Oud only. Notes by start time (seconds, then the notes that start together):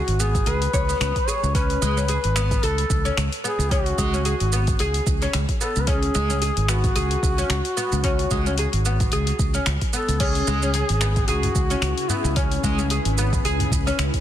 0.20 B3
0.47 G#4
0.73 C#5
0.89 B3
1.01 B3
1.28 G#4
1.55 C#4
1.82 G#3
1.97 C#4
2.09 G#4
2.36 B3
2.63 A4
3.05 C#4
3.44 B3
3.71 C#4
3.98 G#3
4.14 C#4
4.25 G#4
4.53 B3
4.80 G#4
5.22 C#4
5.61 B3
5.87 C#4
6.15 G#3
6.30 C#4
6.42 G#4
6.69 B3
6.96 G#4
7.38 C#4
7.77 B3
8.04 C#4
8.31 G#3
8.47 C#4
8.59 G#4
8.86 B3
9.13 G#4
9.54 C#4
9.93 B3
10.20 C#4
10.47 G#3
10.63 C#4
10.75 G#4
11.02 B3
11.28 G#4
11.71 C#4
12.10 B3
12.36 C#4
12.64 G#3
12.79 C#4
12.91 G#4
13.18 B3
13.45 G#4
13.87 C#4